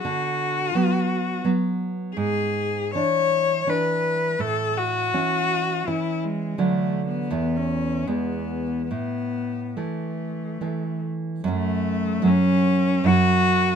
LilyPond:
<<
  \new Staff \with { instrumentName = "Cello" } { \time 3/4 \key a \major \tempo 4 = 81 fis'2 r4 | gis'4 cis''4 b'4 | a'8 fis'4. e'8 gis8 | \tuplet 3/2 { a4 b8~ b8 cis'4 } b4 |
b4 a4. r8 | \key fis \minor a4 cis'4 fis'4 | }
  \new Staff \with { instrumentName = "Nylon-string guitar" } { \clef bass \time 3/4 \key a \major d4 <fis b>4 <fis b>4 | gis,4 <e d'>4 <e d'>4 | a,4 <e cis'>4 <e cis'>4 | <d fis a>4 <e, e a>4 <e, e gis>4 |
a,4 <e a>4 <e a>4 | \key fis \minor <fis, fis cis'>4 <fis, fis cis'>4 <fis, fis cis'>4 | }
>>